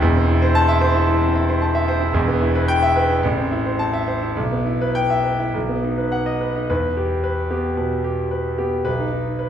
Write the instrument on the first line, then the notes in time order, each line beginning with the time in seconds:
grand piano
0.01 E1 E2
0.16 C4
0.29 E4
0.42 C5
0.55 A5
0.68 E5
0.81 C5
0.94 E4
1.08 E3
1.22 C4
1.35 E4
1.49 C5
1.62 A5
1.75 E5
1.88 C5
2.00 E4
2.13 E1 E2
2.28 B3
2.41 E4
2.55 B4
2.68 G5
2.83 E5
2.96 B4
3.10 E4
3.23 A1
3.37 C4
3.52 E4
3.66 C5
3.79 A5
3.93 E5
4.08 C5
4.22 E4
4.36 B1
4.52 B3
4.66 E4
4.81 B4
4.95 G5
5.10 E5
5.24 B4
5.39 E4
5.54 B1
5.69 B3
5.83 D#4
5.98 B4
6.12 F#5
6.26 D#5
6.41 B4
6.56 D#4
6.70 E2 B4
6.97 G4
7.24 B4
7.50 B3 G4
7.77 B2 B4
8.04 G4
8.31 B4
8.58 B3 G4
8.85 B1 B4
8.98 D#4
9.12 D#4
9.39 B4